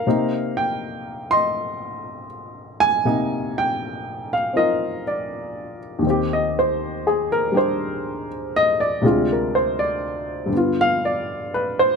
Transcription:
0.00 1.28 A#4 medium
0.00 0.59 F5 medium
0.07 3.04 C3 medium
0.07 3.04 A#3 medium
0.07 3.06 C4 medium
0.07 3.05 D#4 medium
0.57 1.27 G5 medium
1.31 2.77 D#5 medium
1.31 2.26 C6 medium
2.80 3.58 G#5 loud
3.05 6.04 C3 medium
3.05 6.04 A#3 medium
3.05 4.53 D#4 medium
3.58 4.34 G5 medium
4.33 4.54 F5 medium
4.53 6.03 C4 soft
4.53 6.04 D#4 soft
4.53 6.05 F4 soft
4.53 6.01 A#4 medium
4.53 5.03 D#5 medium
5.07 5.77 D5 medium
5.99 9.00 D#2 soft
5.99 9.02 D#3 medium
6.07 9.04 C4 medium
6.07 7.53 G4 medium
6.33 6.55 D#5 medium
6.59 7.03 C5 medium
7.07 7.30 G#4 medium
7.32 7.55 A#4 medium
7.52 9.02 G3 soft
7.52 9.03 D4 soft
7.52 9.03 G4 soft
7.57 8.26 C5 medium
8.56 8.79 D#5 loud
8.80 9.25 D5 medium
9.01 10.51 D2 medium
9.01 10.52 C3 medium
9.01 10.53 G#3 medium
9.06 10.54 F4 medium
9.32 9.54 A#4 medium
9.55 9.78 C5 medium
9.79 10.49 D5 medium
10.46 11.96 G2 soft
10.46 11.96 D3 soft
10.53 11.96 B3 soft
10.53 11.96 F4 medium
10.81 11.03 F5 medium
11.05 11.50 D5 medium
11.54 11.77 B4 medium
11.79 11.96 C5 medium

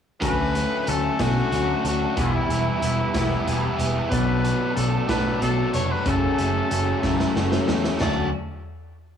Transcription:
0.21 0.63 D2 medium
0.21 0.85 D3 loud
0.21 0.55 F#3 medium
0.21 0.56 A3 medium
0.21 0.55 C#4 medium
0.21 0.53 F#4 loud
0.21 0.90 B4 loud
0.21 kick loud
0.21 closed hi-hat medium
0.54 1.19 F#3 medium
0.54 0.86 A3 medium
0.54 0.87 C#4 medium
0.54 0.88 F#4 medium
0.54 closed hi-hat medium
0.86 1.08 D2 medium
0.86 1.21 D3 medium
0.86 1.20 A3 medium
0.86 1.19 C#4 medium
0.86 1.18 F#4 medium
0.86 1.23 A4 medium
0.86 closed hi-hat medium
1.19 1.40 B2 medium
1.19 1.50 D3 medium
1.19 1.52 F#3 medium
1.19 1.51 A3 medium
1.19 1.52 C#4 medium
1.19 1.53 F#4 medium
1.19 1.85 F#4 loud
1.19 kick medium
1.19 snare loud
1.19 closed hi-hat medium
1.51 1.72 D2 medium
1.51 2.15 D3 medium
1.51 1.85 F#3 medium
1.51 2.15 A3 medium
1.51 2.16 C#4 medium
1.51 2.16 F#4 medium
1.51 closed hi-hat medium
1.84 2.05 D2 medium
1.84 2.16 F#3 medium
1.84 2.15 A3 medium
1.84 2.15 D4 medium
1.84 2.17 F#4 medium
1.84 closed hi-hat medium
2.16 2.38 E1 medium
2.16 2.80 E3 medium
2.16 2.51 G3 medium
2.16 2.50 B3 medium
2.16 2.48 E4 medium
2.16 3.77 E4 medium
2.16 kick loud
2.16 closed hi-hat medium
2.48 2.69 E1 medium
2.48 2.82 G3 medium
2.48 2.83 B3 medium
2.48 2.84 E4 medium
2.48 closed hi-hat medium
2.81 3.02 E1 medium
2.81 3.16 E3 medium
2.81 3.16 G3 medium
2.81 3.14 B3 medium
2.81 3.13 E4 medium
2.81 closed hi-hat medium
3.14 3.35 E1 medium
3.14 3.45 E3 medium
3.14 3.46 G3 medium
3.14 3.47 B3 medium
3.14 3.48 E4 medium
3.14 kick medium
3.14 snare loud
3.14 closed hi-hat medium
3.46 3.67 E1 medium
3.46 4.10 E3 medium
3.46 4.10 G3 medium
3.46 4.11 B3 medium
3.46 4.11 E4 medium
3.46 closed hi-hat medium
3.78 3.99 E1 medium
3.78 4.10 G3 medium
3.78 4.10 B3 medium
3.78 4.09 E4 medium
3.78 closed hi-hat medium
4.10 4.52 B1 medium
4.10 4.75 B2 medium
4.10 4.45 F#3 medium
4.10 4.44 A3 medium
4.10 4.43 B3 medium
4.10 4.41 D4 medium
4.10 4.72 B4 medium
4.10 kick loud
4.10 closed hi-hat medium
4.42 4.77 F#3 medium
4.42 4.77 A3 medium
4.42 5.07 B3 medium
4.42 4.78 D4 medium
4.42 closed hi-hat medium
4.75 4.97 B1 medium
4.75 5.09 B2 medium
4.75 5.10 F#3 medium
4.75 5.09 A3 medium
4.75 5.06 D4 medium
4.75 5.06 A4 medium
4.75 closed hi-hat medium
5.08 5.30 A2 medium
5.08 5.39 B2 medium
5.08 5.41 F#3 medium
5.08 5.42 A3 medium
5.08 5.41 B3 medium
5.08 5.42 D4 loud
5.08 5.39 B4 medium
5.08 kick medium
5.08 snare loud
5.08 closed hi-hat medium
5.40 5.62 B1 medium
5.40 6.04 B2 medium
5.40 6.07 F#3 medium
5.40 6.08 A3 medium
5.40 5.73 B3 medium
5.40 6.06 D4 medium
5.40 5.72 A4 medium
5.40 closed hi-hat medium
5.73 5.94 F1 medium
5.73 6.06 F#3 medium
5.73 6.05 B3 medium
5.73 6.04 D4 medium
5.73 5.93 C#5 loud
5.73 closed hi-hat medium
5.91 6.09 B4 medium
6.05 6.26 F#1 medium
6.05 6.71 F#2 medium
6.05 6.69 C#3 medium
6.05 6.40 F#3 loud
6.05 6.39 A3 medium
6.05 6.37 C#4 medium
6.05 7.37 A4 medium
6.05 kick loud
6.05 closed hi-hat medium
6.38 6.59 F#1 medium
6.38 6.70 F#3 medium
6.38 6.71 A3 medium
6.38 6.72 C#4 medium
6.38 closed hi-hat medium
6.70 6.92 F#1 medium
6.70 7.03 C#3 medium
6.70 7.03 F#3 medium
6.70 7.02 A3 medium
6.70 7.01 C#4 medium
6.70 closed hi-hat medium
7.02 7.24 F#1 medium
7.02 7.69 F#2 medium
7.02 7.34 C#3 medium
7.02 7.35 F#3 medium
7.02 7.36 A3 medium
7.02 7.37 C#4 medium
7.02 kick medium
7.02 snare medium
7.19 snare medium
7.35 7.56 F#1 medium
7.35 7.98 C#3 medium
7.35 7.99 F#3 medium
7.35 8.00 A3 medium
7.35 8.00 C#4 medium
7.35 snare medium
7.52 snare medium
7.68 7.89 E2 medium
7.68 8.00 F#3 soft
7.68 7.99 A3 medium
7.68 7.99 C#4 medium
7.68 snare medium
7.84 snare medium
8.00 8.31 D2 medium
8.00 8.27 D3 medium
8.00 8.27 F#3 loud
8.00 8.27 A3 medium
8.00 8.28 C#4 medium
8.00 8.27 D4 loud
8.00 8.27 F#4 loud
8.00 8.31 D5 medium
8.00 snare loud
8.00 floor tom loud
8.00 china medium

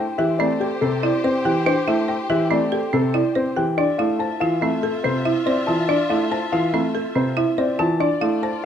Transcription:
0.00 3.52 G4 medium
0.00 0.25 C5 medium
0.00 3.53 C5 medium
0.00 0.25 G5 medium
0.18 0.46 E3 medium
0.18 0.46 G4 medium
0.18 0.46 E5 medium
0.39 0.67 A3 medium
0.39 0.67 C4 medium
0.39 0.67 D5 medium
0.60 0.88 G4 medium
0.60 0.88 A4 medium
0.81 1.09 C3 medium
0.81 1.09 C4 medium
0.81 1.09 A4 medium
1.03 1.31 E4 medium
1.03 1.30 D5 medium
1.24 1.52 C4 medium
1.24 1.52 C5 medium
1.45 1.73 E3 medium
1.45 1.73 G4 medium
1.45 1.73 G5 medium
1.66 1.94 D4 medium
1.66 1.94 C5 medium
1.87 2.15 A3 medium
1.87 2.15 E4 medium
1.87 2.15 E5 medium
2.08 2.36 C5 medium
2.08 2.36 G5 medium
2.30 2.57 E3 medium
2.30 2.57 G4 medium
2.30 2.57 E5 medium
2.51 2.78 A3 medium
2.51 2.78 C4 medium
2.51 2.78 D5 medium
2.72 3.00 G4 medium
2.72 2.99 A4 medium
2.93 3.21 C3 medium
2.93 3.21 C4 medium
2.93 3.21 A4 medium
3.14 3.42 E4 medium
3.14 3.42 D5 medium
3.35 3.63 C4 medium
3.35 3.63 C5 medium
3.56 3.84 E3 medium
3.56 3.84 G4 medium
3.56 3.84 G5 medium
3.78 4.05 D4 medium
3.78 7.75 F4 medium
3.78 4.05 D5 medium
3.78 7.75 E5 medium
3.98 4.26 A3 medium
3.98 4.26 E4 medium
3.98 4.26 F5 medium
4.19 4.47 C5 medium
4.19 4.47 A5 medium
4.40 4.69 E3 medium
4.40 4.69 F4 medium
4.40 4.68 F5 medium
4.61 4.90 A3 medium
4.61 4.90 C4 medium
4.61 4.89 E5 medium
4.83 5.11 A4 medium
5.04 5.32 C3 medium
5.04 5.32 C4 medium
5.04 5.32 C5 medium
5.25 5.53 E4 medium
5.25 5.53 E5 medium
5.46 5.74 C4 medium
5.46 5.74 C5 medium
5.46 5.74 D5 medium
5.67 5.95 E3 medium
5.67 5.95 F4 medium
5.67 5.95 A5 medium
5.89 6.16 D4 medium
5.89 6.16 D5 medium
6.10 6.38 A3 medium
6.10 6.38 E4 medium
6.10 6.37 F5 medium
6.31 6.59 C5 medium
6.31 6.59 A5 medium
6.52 6.80 E3 medium
6.52 6.80 F4 medium
6.52 6.80 F5 medium
6.73 7.01 A3 medium
6.73 7.01 C4 medium
6.73 7.01 E5 medium
6.95 7.22 A4 medium
7.16 7.43 C3 medium
7.16 7.43 C4 medium
7.16 7.43 C5 medium
7.37 7.64 E4 medium
7.37 7.64 E5 medium
7.58 7.85 C4 medium
7.58 7.85 C5 medium
7.58 7.85 D5 medium
7.79 8.07 E3 loud
7.79 8.06 F4 medium
7.79 8.06 A5 medium
8.00 8.28 D4 medium
8.00 8.65 F4 medium
8.00 8.28 D5 medium
8.00 8.65 D5 medium
8.21 8.49 A3 medium
8.21 8.49 E4 medium
8.21 8.49 F5 medium
8.43 8.65 C5 medium
8.43 8.65 A5 medium

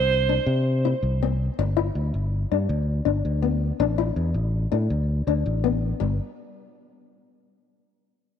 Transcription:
0.00 0.37 C2 medium
0.00 1.20 C5 loud
0.29 0.60 D4 medium
0.46 0.92 C3 loud
0.85 1.15 E4 medium
1.03 1.48 C2 medium
1.23 1.53 C4 medium
1.59 1.89 G1 medium
1.59 muted nylon-string guitar stroke medium
1.77 2.07 E4 medium
1.95 2.10 D2 loud
2.14 2.44 G1 loud
2.52 2.66 G2 medium
2.52 2.82 D4 medium
2.69 3.00 D2 loud
3.05 3.21 G1 medium
3.05 3.36 D4 medium
3.25 3.70 D2 medium
3.42 3.73 B3 medium
3.80 4.10 A1 loud
3.80 3.95 D4 loud
3.98 4.29 E4 medium
4.16 4.32 E2 loud
4.34 4.65 A1 loud
4.72 4.87 A2 medium
4.72 5.03 D4 medium
4.90 5.21 D2 loud
5.27 5.42 D2 medium
5.27 5.58 D4 medium
5.46 5.92 A1 loud
5.64 5.95 B3 medium
6.00 6.18 G1 medium
6.00 6.11 G3 medium

